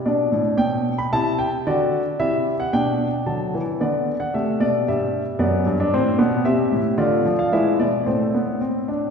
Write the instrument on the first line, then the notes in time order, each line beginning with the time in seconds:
grand piano
0.06 B2 D4 D5
0.32 A2
0.57 B2 G5
0.98 B5
1.13 C3 E4 A5
1.39 G5
1.67 D3 F#4 D5
2.19 C3 E4 E5
2.60 F#5
2.73 B2 D4 G5
3.26 D3 F#3 A5
3.54 E3
3.81 D3 B3 D5
4.20 F#5
4.34 C3 A3 E5
4.60 B2 D5
4.88 G2 G3 E5
5.39 F#2 B3 D5
5.66 G2
5.80 D4
5.94 A2 C4 C5
6.19 B2 B3
6.45 C3 C4 G4 E5
6.72 A2
6.98 D3 A3 F4 D5
7.25 F3
7.39 F5
7.52 E3 G#3 E4 E5
7.80 B2 D5
8.06 A2 A3 C4 C5
8.34 B3
8.61 C4
8.88 D4